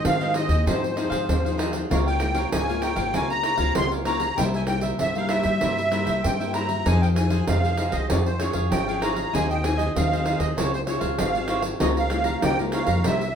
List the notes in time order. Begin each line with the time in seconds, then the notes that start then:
Already playing: G#3 C4 G#4 C5 D#5
0.05 G#2 D#3 F5, pandeiro
0.21 D#3 G#3 C4 G#4 C5 D#5, pandeiro
0.34 D#4 G#4 C5 D#5, pandeiro
0.48 D#2 G#4 C5 D#5, pandeiro
0.66 G#2 F3 C4 D#4 G#4 C5 F5, pandeiro
0.83 muted cavaquinho stroke, pandeiro
0.96 F3 C4 D#4 G#4 C5 F5, pandeiro
1.10 G#2 G#4 C5 F5, pandeiro
1.28 D#2 G#2, pandeiro
1.44 F3 C4 D#4 G#4 C5 F5, pandeiro
1.57 D#4 G#4 C5 F5, pandeiro
1.72 G#4 C5 F5, pandeiro
1.90 C#2 C#3 G#3 A#3 F4 A#4 C#5 F5, pandeiro
2.06 A#4 C#5 F5 G5, pandeiro
2.20 G#3 A#3 F4, muted cavaquinho stroke, pandeiro
2.35 A#4 C#5 F5, pandeiro
2.52 C#2 G#2 G#5, pandeiro
2.68 G#3 A#3 F4 A#4 C#5 F5, pandeiro
2.81 F4 A#4 C#5 F5 G5, pandeiro
2.96 G#1 A#3 C4 F4 A#4 C#5 F5, pandeiro
3.14 C#2 C#3 F4 A#4 C#5 F5 G#5, pandeiro
3.30 A#5, muted cavaquinho stroke, pandeiro
3.43 F4 A#4 C#5 F5, pandeiro
3.58 C#2 A#3 C4 F4 A#4 C#5 F5, pandeiro
3.75 C#2 C#3 C6, pandeiro
3.92 A#4 C#5 F5, pandeiro
4.05 A#3 C4 F4 A#4 C#5 F5 A#5, pandeiro
4.20 A#4 C#5 F5, pandeiro
4.37 C2 C3 G3 A#3 E4 A#4 C5 E5 G5, pandeiro
4.54 A#4 C5 E5 G#5, pandeiro
4.67 G3 A#3 E4 G5, muted cavaquinho stroke, pandeiro
4.81 A#4 C5 E5, pandeiro
4.99 C2 G2 E5, pandeiro
5.15 G3 A#3 E4 A#4 C5 E5 F5, pandeiro
5.29 E4 A#4 C5 E5, pandeiro
5.43 G2 A#4 C5 E5, pandeiro
5.61 G2 C3 G3 A#3 E4 A#4 C5 E5, pandeiro
5.78 muted cavaquinho stroke, pandeiro
5.91 G3 A#3 E4 A#4 C5 E5, pandeiro
6.05 C2 A#4 C5 E5, pandeiro
6.23 G2 G5, pandeiro
6.40 G3 A#3 E4 A#4 C5 E5, pandeiro
6.53 E4 A#4 C5 E5 A#5, pandeiro
6.67 A#4 C5 E5, pandeiro
6.85 F2 F3 C4 D#4 G#4 C5 F5 G#5, pandeiro
7.01 G#4 C5 F5 G5, pandeiro
7.15 C4 D#4 G#4 G#5, muted cavaquinho stroke, pandeiro
7.30 G#4 C5 F5, pandeiro
7.47 F2 C3 F5, pandeiro
7.64 C4 D#4 G#4 C5 F5, pandeiro
7.77 D#4 G#4 C5 F5, pandeiro
7.92 C2 G#4 C5 D#5 F5, pandeiro
8.09 F2 F3 C#4 F4 G#4 C#5 F5, pandeiro
8.25 C5, muted cavaquinho stroke, pandeiro
8.39 C#4 F4 G#4 C#5 F5, pandeiro
8.53 F2 G#4 C#5 F5, pandeiro
8.71 G#1 F3 G5, pandeiro
8.88 C#4 F4 G#4 C#5 F5, pandeiro
9.01 F4 G#4 C#5 F5 A#5, pandeiro
9.15 G#4 C#5 F5, pandeiro
9.32 D#2 D#3 C4 D#4 G#4 C5 D#5 G#5, pandeiro
9.50 G#4 C5 D#5 G5, pandeiro
9.63 C4 D#4 G#4 G#5, muted cavaquinho stroke, pandeiro
9.77 G#4 C5 D#5, pandeiro
9.96 D#2 D#3 F5, pandeiro
10.11 C4 D#4 G#4 C5 D#5, pandeiro
10.24 D#4 G#4 C5 D#5, pandeiro
10.39 D#2 G#4 C5 D#5, pandeiro
10.57 C#2 C#3 C4 F4 G#4 C5 C#5 F5, pandeiro
10.73 C5, muted cavaquinho stroke, pandeiro
10.86 F4 G#4 C5 C#5 F5, pandeiro
11.00 C#2 C5 C#5 F5, pandeiro
11.18 G#1 G#2 F5, pandeiro
11.34 C4 F4 G#4 C5 C#5 F5, pandeiro
11.48 F4 C5 C#5 F5, pandeiro
11.62 C5 C#5 F5, pandeiro
11.80 C#2 C#3 G#3 A#3 F4 G#4 C#5 D#5 F5 A#5, pandeiro
11.97 C#5 F5 A#5, pandeiro
12.10 G#3 A#3 F4, muted cavaquinho stroke, pandeiro
12.24 C#5 F5 A#5, pandeiro
12.42 C#2 C#3 G5, pandeiro
12.59 G#3 A#3 F4 C#5 F5 A#5, pandeiro
12.72 G#4 C#5 F5 A#5, pandeiro
12.87 F2 C#5 F5 A#5, pandeiro
13.04 C2 C3 G3 A#3 E4 A#4 C5 E5, pandeiro
13.21 muted cavaquinho stroke, pandeiro